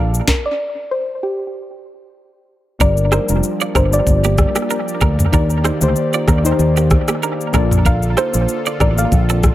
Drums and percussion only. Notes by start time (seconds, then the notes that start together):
0.14 shaker
0.28 kick, snare
2.80 kick, shaker
2.97 shaker
3.12 cross-stick, shaker
3.29 shaker
3.43 shaker
3.61 shaker
3.75 kick, cross-stick, shaker
3.93 shaker
4.07 kick, shaker
4.24 shaker
4.38 kick, cross-stick, shaker
4.55 cross-stick, shaker
4.70 shaker
4.88 shaker
5.01 kick, cross-stick, shaker
5.19 mid tom, shaker
5.33 kick, shaker
5.50 shaker
5.64 cross-stick, shaker
5.81 shaker
5.96 shaker
6.13 shaker
6.28 kick, cross-stick, shaker
6.45 shaker
6.59 shaker
6.77 shaker
6.90 kick, cross-stick, shaker
7.08 cross-stick, shaker
7.23 shaker
7.41 shaker
7.53 kick, cross-stick, shaker
7.71 mid tom, shaker
7.86 kick, shaker
8.03 shaker
8.17 cross-stick, shaker
8.34 shaker
8.48 shaker
8.66 shaker
8.80 kick, cross-stick, shaker
8.98 shaker
9.12 kick, shaker
9.29 shaker
9.43 kick, cross-stick, shaker